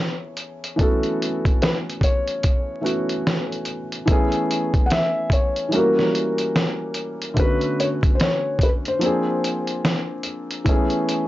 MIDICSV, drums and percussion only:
0, 0, Header, 1, 2, 480
1, 0, Start_track
1, 0, Key_signature, 3, "major"
1, 0, Tempo, 821918
1, 464, Time_signature, 4, 2, 24, 8
1, 6586, End_track
2, 0, Start_track
2, 0, Title_t, "Drums"
2, 215, Note_on_c, 9, 42, 60
2, 273, Note_off_c, 9, 42, 0
2, 373, Note_on_c, 9, 42, 50
2, 431, Note_off_c, 9, 42, 0
2, 462, Note_on_c, 9, 36, 108
2, 462, Note_on_c, 9, 42, 75
2, 520, Note_off_c, 9, 42, 0
2, 521, Note_off_c, 9, 36, 0
2, 603, Note_on_c, 9, 42, 36
2, 662, Note_off_c, 9, 42, 0
2, 714, Note_on_c, 9, 42, 78
2, 772, Note_off_c, 9, 42, 0
2, 848, Note_on_c, 9, 36, 99
2, 852, Note_on_c, 9, 42, 46
2, 906, Note_off_c, 9, 36, 0
2, 910, Note_off_c, 9, 42, 0
2, 946, Note_on_c, 9, 42, 69
2, 954, Note_on_c, 9, 38, 99
2, 1004, Note_off_c, 9, 42, 0
2, 1012, Note_off_c, 9, 38, 0
2, 1107, Note_on_c, 9, 42, 34
2, 1165, Note_off_c, 9, 42, 0
2, 1174, Note_on_c, 9, 36, 85
2, 1187, Note_on_c, 9, 42, 77
2, 1233, Note_off_c, 9, 36, 0
2, 1245, Note_off_c, 9, 42, 0
2, 1328, Note_on_c, 9, 42, 43
2, 1387, Note_off_c, 9, 42, 0
2, 1421, Note_on_c, 9, 42, 84
2, 1426, Note_on_c, 9, 36, 79
2, 1480, Note_off_c, 9, 42, 0
2, 1484, Note_off_c, 9, 36, 0
2, 1671, Note_on_c, 9, 42, 60
2, 1729, Note_off_c, 9, 42, 0
2, 1807, Note_on_c, 9, 42, 46
2, 1865, Note_off_c, 9, 42, 0
2, 1909, Note_on_c, 9, 38, 108
2, 1911, Note_on_c, 9, 42, 56
2, 1967, Note_off_c, 9, 38, 0
2, 1969, Note_off_c, 9, 42, 0
2, 2058, Note_on_c, 9, 42, 33
2, 2116, Note_off_c, 9, 42, 0
2, 2133, Note_on_c, 9, 42, 59
2, 2191, Note_off_c, 9, 42, 0
2, 2290, Note_on_c, 9, 42, 53
2, 2349, Note_off_c, 9, 42, 0
2, 2380, Note_on_c, 9, 42, 80
2, 2382, Note_on_c, 9, 36, 109
2, 2439, Note_off_c, 9, 42, 0
2, 2440, Note_off_c, 9, 36, 0
2, 2522, Note_on_c, 9, 42, 37
2, 2581, Note_off_c, 9, 42, 0
2, 2632, Note_on_c, 9, 42, 74
2, 2691, Note_off_c, 9, 42, 0
2, 2767, Note_on_c, 9, 36, 102
2, 2770, Note_on_c, 9, 42, 49
2, 2826, Note_off_c, 9, 36, 0
2, 2828, Note_off_c, 9, 42, 0
2, 2864, Note_on_c, 9, 42, 75
2, 2872, Note_on_c, 9, 38, 105
2, 2923, Note_off_c, 9, 42, 0
2, 2930, Note_off_c, 9, 38, 0
2, 3094, Note_on_c, 9, 36, 90
2, 3105, Note_on_c, 9, 42, 77
2, 3153, Note_off_c, 9, 36, 0
2, 3164, Note_off_c, 9, 42, 0
2, 3248, Note_on_c, 9, 42, 40
2, 3306, Note_off_c, 9, 42, 0
2, 3342, Note_on_c, 9, 42, 91
2, 3400, Note_off_c, 9, 42, 0
2, 3498, Note_on_c, 9, 38, 39
2, 3556, Note_off_c, 9, 38, 0
2, 3591, Note_on_c, 9, 42, 64
2, 3650, Note_off_c, 9, 42, 0
2, 3727, Note_on_c, 9, 42, 47
2, 3786, Note_off_c, 9, 42, 0
2, 3830, Note_on_c, 9, 38, 101
2, 3831, Note_on_c, 9, 42, 57
2, 3888, Note_off_c, 9, 38, 0
2, 3890, Note_off_c, 9, 42, 0
2, 4054, Note_on_c, 9, 42, 60
2, 4113, Note_off_c, 9, 42, 0
2, 4214, Note_on_c, 9, 42, 52
2, 4273, Note_off_c, 9, 42, 0
2, 4302, Note_on_c, 9, 42, 82
2, 4303, Note_on_c, 9, 36, 120
2, 4361, Note_off_c, 9, 42, 0
2, 4362, Note_off_c, 9, 36, 0
2, 4445, Note_on_c, 9, 42, 37
2, 4504, Note_off_c, 9, 42, 0
2, 4554, Note_on_c, 9, 42, 73
2, 4613, Note_off_c, 9, 42, 0
2, 4689, Note_on_c, 9, 36, 100
2, 4692, Note_on_c, 9, 42, 44
2, 4748, Note_off_c, 9, 36, 0
2, 4751, Note_off_c, 9, 42, 0
2, 4787, Note_on_c, 9, 42, 76
2, 4795, Note_on_c, 9, 38, 105
2, 4845, Note_off_c, 9, 42, 0
2, 4853, Note_off_c, 9, 38, 0
2, 5016, Note_on_c, 9, 36, 87
2, 5029, Note_on_c, 9, 42, 75
2, 5074, Note_off_c, 9, 36, 0
2, 5087, Note_off_c, 9, 42, 0
2, 5170, Note_on_c, 9, 42, 38
2, 5229, Note_off_c, 9, 42, 0
2, 5263, Note_on_c, 9, 42, 89
2, 5322, Note_off_c, 9, 42, 0
2, 5514, Note_on_c, 9, 42, 67
2, 5573, Note_off_c, 9, 42, 0
2, 5649, Note_on_c, 9, 42, 44
2, 5708, Note_off_c, 9, 42, 0
2, 5751, Note_on_c, 9, 38, 108
2, 5753, Note_on_c, 9, 42, 56
2, 5809, Note_off_c, 9, 38, 0
2, 5811, Note_off_c, 9, 42, 0
2, 5976, Note_on_c, 9, 42, 58
2, 6035, Note_off_c, 9, 42, 0
2, 6136, Note_on_c, 9, 42, 56
2, 6194, Note_off_c, 9, 42, 0
2, 6224, Note_on_c, 9, 36, 113
2, 6224, Note_on_c, 9, 42, 83
2, 6282, Note_off_c, 9, 36, 0
2, 6283, Note_off_c, 9, 42, 0
2, 6365, Note_on_c, 9, 42, 37
2, 6424, Note_off_c, 9, 42, 0
2, 6474, Note_on_c, 9, 42, 78
2, 6533, Note_off_c, 9, 42, 0
2, 6586, End_track
0, 0, End_of_file